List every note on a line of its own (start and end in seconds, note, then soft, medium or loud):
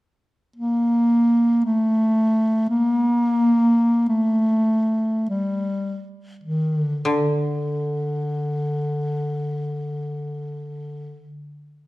0.56 1.61 A#3 medium
1.65 2.65 A3 medium
2.69 4.05 A#3 medium
4.09 5.26 A3 medium
5.29 6.05 G3 soft
6.44 6.80 D#3 soft
6.80 7.05 D3 soft
7.05 10.43 D3 soft
7.11 11.31 D3 soft